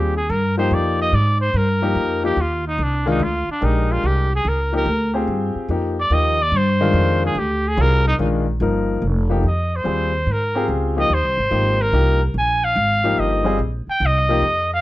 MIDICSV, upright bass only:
0, 0, Header, 1, 3, 480
1, 0, Start_track
1, 0, Key_signature, -3, "minor"
1, 0, Tempo, 415225
1, 350, Time_signature, 3, 2, 24, 8
1, 10428, Key_signature, -4, "minor"
1, 17123, End_track
2, 0, Start_track
2, 0, Title_t, "Upright bass"
2, 0, Program_c, 0, 32
2, 0, Note_on_c, 0, 39, 86
2, 331, Note_off_c, 0, 39, 0
2, 342, Note_on_c, 0, 43, 87
2, 812, Note_off_c, 0, 43, 0
2, 820, Note_on_c, 0, 41, 88
2, 1291, Note_off_c, 0, 41, 0
2, 1301, Note_on_c, 0, 44, 92
2, 1772, Note_off_c, 0, 44, 0
2, 1777, Note_on_c, 0, 43, 91
2, 2250, Note_off_c, 0, 43, 0
2, 2256, Note_on_c, 0, 41, 84
2, 2729, Note_off_c, 0, 41, 0
2, 2734, Note_on_c, 0, 39, 88
2, 3208, Note_off_c, 0, 39, 0
2, 3214, Note_on_c, 0, 36, 90
2, 3688, Note_off_c, 0, 36, 0
2, 3694, Note_on_c, 0, 38, 90
2, 4003, Note_off_c, 0, 38, 0
2, 4183, Note_on_c, 0, 34, 92
2, 4652, Note_off_c, 0, 34, 0
2, 4662, Note_on_c, 0, 36, 83
2, 5132, Note_off_c, 0, 36, 0
2, 5140, Note_on_c, 0, 37, 85
2, 5608, Note_off_c, 0, 37, 0
2, 5615, Note_on_c, 0, 38, 91
2, 6087, Note_off_c, 0, 38, 0
2, 6098, Note_on_c, 0, 43, 88
2, 6405, Note_off_c, 0, 43, 0
2, 6573, Note_on_c, 0, 41, 84
2, 7046, Note_off_c, 0, 41, 0
2, 7054, Note_on_c, 0, 39, 89
2, 7527, Note_off_c, 0, 39, 0
2, 7534, Note_on_c, 0, 43, 92
2, 8007, Note_off_c, 0, 43, 0
2, 8016, Note_on_c, 0, 41, 95
2, 8488, Note_off_c, 0, 41, 0
2, 8497, Note_on_c, 0, 38, 95
2, 8968, Note_off_c, 0, 38, 0
2, 8987, Note_on_c, 0, 36, 102
2, 9453, Note_off_c, 0, 36, 0
2, 9468, Note_on_c, 0, 34, 90
2, 9934, Note_off_c, 0, 34, 0
2, 9942, Note_on_c, 0, 31, 93
2, 10411, Note_off_c, 0, 31, 0
2, 10425, Note_on_c, 0, 29, 91
2, 10892, Note_off_c, 0, 29, 0
2, 10907, Note_on_c, 0, 41, 77
2, 11373, Note_off_c, 0, 41, 0
2, 11389, Note_on_c, 0, 39, 81
2, 11855, Note_off_c, 0, 39, 0
2, 11866, Note_on_c, 0, 44, 81
2, 12333, Note_off_c, 0, 44, 0
2, 12348, Note_on_c, 0, 37, 90
2, 12814, Note_off_c, 0, 37, 0
2, 12827, Note_on_c, 0, 39, 83
2, 12986, Note_off_c, 0, 39, 0
2, 12986, Note_on_c, 0, 36, 56
2, 13141, Note_off_c, 0, 36, 0
2, 13148, Note_on_c, 0, 32, 68
2, 13298, Note_off_c, 0, 32, 0
2, 13307, Note_on_c, 0, 32, 86
2, 13774, Note_off_c, 0, 32, 0
2, 13781, Note_on_c, 0, 36, 93
2, 14251, Note_off_c, 0, 36, 0
2, 14266, Note_on_c, 0, 34, 90
2, 14734, Note_off_c, 0, 34, 0
2, 14747, Note_on_c, 0, 32, 91
2, 15214, Note_off_c, 0, 32, 0
2, 15231, Note_on_c, 0, 31, 79
2, 15696, Note_off_c, 0, 31, 0
2, 15706, Note_on_c, 0, 34, 84
2, 16010, Note_off_c, 0, 34, 0
2, 16187, Note_on_c, 0, 36, 97
2, 16653, Note_off_c, 0, 36, 0
2, 16667, Note_on_c, 0, 41, 82
2, 17123, Note_off_c, 0, 41, 0
2, 17123, End_track
3, 0, Start_track
3, 0, Title_t, "Muted upright bass strokes"
3, 4022, Note_on_c, 9, 29, 37
3, 4138, Note_off_c, 9, 29, 0
3, 6419, Note_on_c, 9, 29, 43
3, 6535, Note_off_c, 9, 29, 0
3, 16032, Note_on_c, 9, 29, 38
3, 16148, Note_off_c, 9, 29, 0
3, 17123, End_track
0, 0, End_of_file